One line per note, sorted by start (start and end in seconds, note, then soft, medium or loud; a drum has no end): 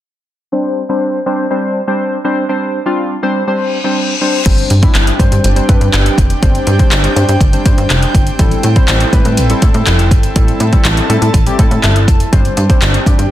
0.52 0.82 G3 medium
0.52 0.82 C4 medium
0.52 0.83 D4 medium
0.52 0.83 C5 medium
0.89 1.19 G3 medium
0.89 1.19 C4 medium
0.89 1.19 D4 medium
0.89 1.20 C5 medium
1.26 1.46 G3 medium
1.26 1.46 C4 medium
1.26 1.46 D4 medium
1.26 1.46 C5 medium
1.50 1.81 G3 medium
1.50 1.81 C4 medium
1.50 1.81 D4 medium
1.50 1.81 C5 medium
1.87 2.18 G3 medium
1.87 2.18 C4 medium
1.87 2.18 D4 medium
1.87 2.18 C5 medium
2.24 2.45 G3 medium
2.24 2.45 C4 medium
2.24 2.45 D4 medium
2.24 2.45 C5 medium
2.49 2.79 G3 medium
2.49 2.79 C4 medium
2.49 2.79 D4 medium
2.49 2.79 C5 medium
2.86 3.16 G3 medium
2.86 3.16 C4 medium
2.86 3.16 D4 medium
2.86 3.16 F4 medium
3.23 3.43 G3 medium
3.23 3.43 C4 medium
3.23 3.43 D4 medium
3.23 3.43 C5 medium
3.47 3.77 G3 medium
3.47 3.78 C4 medium
3.47 3.78 D4 medium
3.47 3.78 C5 medium
3.47 reverse cymbal medium
3.84 4.14 G3 medium
3.84 4.14 C4 medium
3.84 4.15 D4 medium
3.84 4.15 C5 medium
4.21 4.41 G3 medium
4.21 4.41 C4 medium
4.21 4.41 D4 medium
4.21 4.41 C5 medium
4.46 4.62 G1 loud
4.46 4.76 G3 medium
4.46 4.76 C4 medium
4.46 12.29 C4 medium
4.46 8.35 D4 medium
4.46 4.76 D4 medium
4.46 8.35 G4 medium
4.46 4.76 C5 medium
4.46 10.32 G5 medium
4.46 kick loud
4.46 closed hi-hat medium
4.46 crash loud
4.46 impact medium
4.58 closed hi-hat soft
4.70 4.86 G2 loud
4.70 closed hi-hat medium
4.82 5.13 G3 medium
4.82 5.13 C4 medium
4.82 5.13 D4 medium
4.82 5.13 E4 medium
4.82 kick medium
4.82 closed hi-hat soft
4.95 5.11 G1 medium
4.95 clap loud
4.95 closed hi-hat medium
5.07 closed hi-hat medium
5.19 5.27 G2 loud
5.19 5.50 G3 medium
5.19 5.50 C4 medium
5.19 5.50 D4 medium
5.19 5.50 C5 loud
5.19 kick loud
5.19 closed hi-hat medium
5.32 5.40 G2 loud
5.32 closed hi-hat medium
5.44 5.60 G1 loud
5.44 closed hi-hat loud
5.56 5.66 G3 medium
5.56 5.66 C4 medium
5.56 5.66 D4 medium
5.56 5.67 C5 loud
5.56 closed hi-hat medium
5.68 5.77 G2 loud
5.68 6.29 G3 medium
5.68 6.29 C4 medium
5.68 6.29 D4 medium
5.68 6.29 B4 loud
5.68 kick loud
5.68 closed hi-hat medium
5.81 5.89 G2 loud
5.81 closed hi-hat soft
5.93 6.09 G1 loud
5.93 clap loud
5.93 closed hi-hat medium
6.06 closed hi-hat medium
6.18 6.34 F1 loud
6.18 kick medium
6.18 closed hi-hat medium
6.30 closed hi-hat soft
6.42 6.59 G1 loud
6.42 6.72 G3 medium
6.42 6.73 C4 medium
6.42 6.73 D4 medium
6.42 6.73 C5 medium
6.42 kick loud
6.42 closed hi-hat medium
6.55 closed hi-hat soft
6.67 6.83 G2 loud
6.67 closed hi-hat medium
6.79 7.10 G3 medium
6.79 7.10 C4 medium
6.79 7.10 D4 medium
6.79 7.10 C5 loud
6.79 kick medium
6.79 closed hi-hat soft
6.92 7.08 G1 loud
6.92 clap loud
6.92 closed hi-hat medium
7.04 closed hi-hat medium
7.16 7.24 G2 loud
7.16 7.46 G3 medium
7.16 7.46 C4 medium
7.16 7.46 D4 medium
7.16 7.47 C5 loud
7.16 closed hi-hat medium
7.29 7.37 G2 loud
7.29 closed hi-hat medium
7.41 7.57 G1 loud
7.41 kick loud
7.41 closed hi-hat loud
7.53 7.63 G3 medium
7.53 7.63 C4 medium
7.53 7.63 D4 medium
7.53 7.63 C5 medium
7.53 closed hi-hat medium
7.65 7.74 G2 medium
7.65 8.26 G3 medium
7.65 8.26 C4 medium
7.65 8.26 D4 medium
7.65 8.26 C5 loud
7.65 kick loud
7.65 closed hi-hat medium
7.78 7.86 G2 loud
7.78 closed hi-hat soft
7.90 8.06 F1 loud
7.90 clap loud
7.90 closed hi-hat medium
8.03 closed hi-hat medium
8.15 8.31 G1 loud
8.15 kick medium
8.15 closed hi-hat medium
8.27 closed hi-hat soft
8.39 8.55 A1 loud
8.39 8.69 G3 medium
8.39 8.69 C4 medium
8.39 12.29 E4 medium
8.39 8.69 E4 medium
8.39 12.29 A4 medium
8.39 8.70 A4 medium
8.39 kick loud
8.39 closed hi-hat medium
8.51 closed hi-hat soft
8.63 8.80 A2 loud
8.63 closed hi-hat medium
8.76 9.06 G3 medium
8.76 9.06 C4 medium
8.76 9.06 E4 medium
8.76 9.06 C5 loud
8.76 kick medium
8.76 closed hi-hat soft
8.88 9.04 A1 loud
8.88 clap loud
8.88 closed hi-hat medium
9.00 closed hi-hat medium
9.13 9.21 A2 loud
9.13 9.43 G3 medium
9.13 9.43 C4 medium
9.13 9.43 E4 medium
9.13 9.43 B4 loud
9.13 kick loud
9.13 closed hi-hat medium
9.25 9.39 A2 loud
9.25 closed hi-hat medium
9.37 9.54 A1 loud
9.37 closed hi-hat loud
9.50 9.60 G3 medium
9.50 9.60 C4 medium
9.50 9.60 E4 medium
9.50 9.60 A4 medium
9.50 closed hi-hat medium
9.62 9.70 A2 medium
9.62 10.22 G3 medium
9.62 10.22 C4 medium
9.62 10.23 E4 medium
9.62 10.23 A4 loud
9.62 kick loud
9.62 closed hi-hat medium
9.74 9.82 A2 loud
9.74 closed hi-hat soft
9.87 10.13 F1 medium
9.87 clap loud
9.87 closed hi-hat medium
9.99 closed hi-hat medium
10.11 10.27 G1 medium
10.11 kick medium
10.11 closed hi-hat medium
10.23 closed hi-hat soft
10.36 10.52 A1 loud
10.36 10.66 G3 medium
10.36 10.66 C4 medium
10.36 10.66 E4 medium
10.36 10.66 A4 medium
10.36 12.31 A5 medium
10.36 kick loud
10.36 closed hi-hat medium
10.48 closed hi-hat soft
10.60 10.76 A2 loud
10.60 closed hi-hat medium
10.73 11.03 G3 medium
10.73 11.03 C4 medium
10.73 11.03 E4 medium
10.73 11.03 A4 medium
10.73 kick medium
10.73 closed hi-hat soft
10.85 11.01 A1 loud
10.85 clap loud
10.85 closed hi-hat medium
10.97 closed hi-hat medium
11.09 11.18 A2 loud
11.09 11.40 G3 medium
11.09 11.40 C4 medium
11.09 11.40 E4 medium
11.09 11.40 A4 loud
11.09 closed hi-hat medium
11.22 11.30 A2 loud
11.22 closed hi-hat medium
11.34 11.50 A1 medium
11.34 kick loud
11.34 closed hi-hat loud
11.46 11.56 G3 medium
11.46 11.57 C4 medium
11.46 11.57 E4 medium
11.46 11.57 G4 medium
11.46 closed hi-hat medium
11.59 11.67 A2 loud
11.59 12.19 G3 medium
11.59 12.19 C4 medium
11.59 12.19 E4 medium
11.59 12.19 A4 loud
11.59 kick loud
11.59 closed hi-hat medium
11.71 11.79 A2 loud
11.71 closed hi-hat soft
11.83 12.09 G1 medium
11.83 12.06 E5 medium
11.83 clap loud
11.83 closed hi-hat medium
11.96 closed hi-hat medium
12.08 12.24 F1 loud
12.08 12.31 A5 medium
12.08 kick medium
12.08 closed hi-hat medium
12.20 closed hi-hat soft
12.32 12.49 G1 loud
12.32 12.63 G3 medium
12.32 13.31 C4 medium
12.32 12.63 C4 medium
12.32 13.31 D4 medium
12.32 12.63 D4 medium
12.32 13.31 G4 medium
12.32 12.63 C5 medium
12.32 13.31 G5 medium
12.32 kick loud
12.32 closed hi-hat medium
12.45 closed hi-hat soft
12.57 12.73 G2 loud
12.57 closed hi-hat medium
12.69 13.00 G3 medium
12.69 13.00 C4 medium
12.69 13.00 D4 medium
12.69 13.00 C5 medium
12.69 kick medium
12.69 closed hi-hat soft
12.82 12.98 G1 loud
12.82 clap loud
12.82 closed hi-hat medium
12.94 closed hi-hat medium
13.06 13.14 G2 medium
13.06 13.31 G3 medium
13.06 13.31 C4 medium
13.06 13.31 D4 medium
13.06 13.31 G4 medium
13.06 kick loud
13.06 closed hi-hat medium
13.19 13.27 G2 medium
13.19 closed hi-hat medium